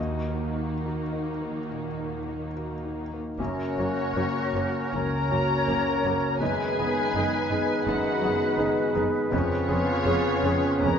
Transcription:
Already playing: D#2 D#3 A#3 D#4
0.00 D#2 F#4 D#5
0.29 A#3
0.56 D#4
0.86 F#4
1.12 D#4
1.42 A#3
1.71 A#2
1.99 A#3
2.28 D#4
2.56 F#4
2.85 D#4
3.14 A#3
3.37 F#1 F#2 C#3 A#3 C#4 F#4 A#4 C#5
3.77 F#1 F#2 A#3 C#4 F#4
4.14 F#1 F#2 A#3 C#4 F#4
4.53 F#1 F#2 A#3 C#4 F#4
4.91 F#1 C#2 F#2 C#3 A#3 C#4 F#4 A#4 C#5 A#5
5.30 F#1 F#2 A#3 C#4 F#4
5.66 F#1 F#2 A#3 C#4 F#4
6.03 F#1 F#2 A#3 C#4 F#4
6.39 F#1 F#2 D#3 G#3 B3 D#4 G#4 B4 G#5
6.78 F#1 F#2 B3 D#4 G#4
7.13 F#1 F#2 B3 D#4 G#4
7.50 F#1 F#2 B3 D#4 G#4
7.85 F#1 F#2 D#3 G#3 B3 D#4 F#4 G#4 B4 F#5
8.22 F#1 F#2 B3 D#4 G#4
8.58 F#1 F#2 B3 D#4 G#4
8.95 F#1 F#2 B3 D#4 G#4
9.31 F1 F2 C#3 B3 C#4 F4 G#4 C#5
9.68 F1 F2 B3 C#4 G#4
10.04 F1 F2 B3 C#4 G#4
10.43 F1 F2 B3 C#4 G#4
10.81 F1 F2 B3 C#4 A#4 C#5 A#5

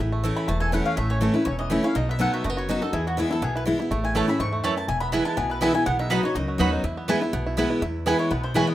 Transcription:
0.00 A1 A2 E4
0.12 A3
0.24 E3 A3 C#4 E4 A4
0.36 E4 B5
0.48 E1 E2 A3 A5
0.60 A4 G#5
0.72 E3 A3 C#4 E4 F#5
0.86 C#4 F5
0.97 A1 A2 A3 E5
1.10 C#4 C#5
1.21 E3 A3 C#4 E4 A4
1.34 C#4 E4 B4
1.45 E1 E2 C#4 C#5
1.59 E3 D#5
1.70 E3 A3 C#4 E4 E5
1.83 C#4 E4 F5
1.95 B1 B2 D#4 D#5
2.09 B3 E5
2.19 F#3 B3 D#4 F#4 A4 F#5
2.34 F#4 E5
2.44 F#1 F#2 A3 D#5
2.50 B3
2.57 F#4 C#5
2.69 F#3 B3 D#4 F#4 B4
2.82 D#4 F#4 A4
2.93 E2 E4 G#4
3.07 B3 F#4
3.17 E3 G#3 B3 E4 G#4
3.31 B3 E4 A4
3.42 B1 B2 B3 G#4
3.56 E4 B4
3.65 E3 G#3 B3 E4
3.79 B3 E4
3.91 A1 A2 A3
4.04 E4 G#5
4.15 E3 A3 C#4 E4 C#5 A5
4.28 C#4 E4 A4 B5
4.39 E2 G#2 E4 C#6
4.53 A3
4.64 F#2 E3 A3 E4 C#5 A5
4.77 E4 A5
4.88 E1 E2 E4 G#5
5.00 B3 B5
5.12 E3 G#3 B3 E4 B4 G#5
5.25 E4 A5
5.37 B1 B2 B3 G#5
5.50 E4 B4
5.61 E3 G#3 B3 E4 B4 E5 G#5
5.74 B3 E4 G#5
5.86 B1 B2 B3 F#5
5.99 D#4 E5
6.10 F#3 B3 D#4 F#4 B4 D#5 F#5 B5
6.23 D#4 F#4 C#5
6.35 C#2 F#2 D#4 D#5
6.48 F#3
6.58 D#2 F#3 B3 D#4 F#4 B4 F#5 B5
6.73 D#4
6.84 E2 E4
6.97 B3
7.08 E3 G#3 B3 E4 B4 G#5
7.21 B3 E4
7.33 B1 B2 B3
7.46 E4
7.57 E3 G#3 B3 E4 B4 G#5
7.70 E4
7.82 E2 E4
8.06 E3 G#3 B3 E4 B4 G#5
8.19 E4 C#5
8.31 B1 B2 B3 B4
8.44 E4 C5
8.54 E3 G#3 B3 E4 B4 C#5 G#5
8.67 B3 D#5

